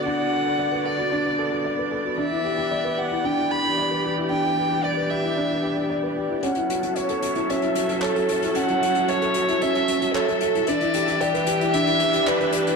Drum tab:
HH |----------------|----------------|----------------|xxxxxxxxxxxxxxxx|
CP |----------------|----------------|----------------|------------x---|

HH |xxxxxxxxxxxxxxxx|xxxxxxxxxxxxxxxx|
CP |------------x---|------------x---|